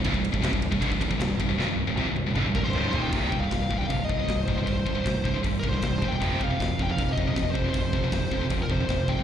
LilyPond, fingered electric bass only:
\new Staff \with { instrumentName = "Fingered electric bass" } { \clef bass \time 4/4 \key c \phrygian \tempo 4 = 156 c,,16 c,,8 c,,16 f,,16 c,,8 c,,16 g,,16 c,,16 c,,16 c,,16 c,,8 c,,16 c,,16 | c,,16 c,,8 c,,16 f,,16 c,,8 c,,16 g,,16 c,,16 c,,16 c,,16 des,,8 ees,,8 | \key c \minor c,,8 c,,8 c,,8 c,,8 c,,8 c,,8 c,,8 c,,8 | c,,8 c,,8 c,,8 c,,8 c,,8 c,,8 c,,8 e,,8 |
f,,8 f,,8 f,,8 f,,8 f,,8 f,,8 f,,8 f,,8 | f,,8 f,,8 f,,8 f,,8 f,,8 f,,8 f,,8 g,,8 | }